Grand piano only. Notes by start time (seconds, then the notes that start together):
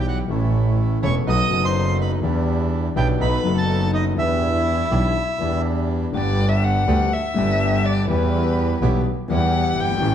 Already playing: B1 B2 E3 G3 B3 G4
0.28 A1 A2 E3 A3 C#4
0.32 A4
1.03 E1 E2 E3 A3 C#4 A4
1.27 B1 B2 F#3 B3 D#4 A4
1.49 F#1 F#2 F#3 B3 D#4 A4
2.22 E2 E3 B3 D4 G4
2.96 B1 B2 E3 B3 D4 G4
3.20 B1 B2 F#3 B3 D#4 A4
3.43 F#1 F#2 F#3 B3 D#4 A4
4.15 E2 E3 B3 D4 G4
4.91 B1 B2 E3 B3 D4 G4
5.40 E2 E3 B3 D4 G4
6.12 G1 G2 D3 G3 B3 G4
6.88 D2 D3 G3 B3 G4
7.34 G1 G2 D3 G3 B3
7.38 G4
8.07 E2 E3 G3 B3 G4
8.82 B1 B2 E3 G3 B3 G4
9.28 E2 E3 G3 B3
9.32 G4
9.85 F#1
9.91 G1
9.97 G#1 E3
10.02 A1 A2 A3 C#4 G4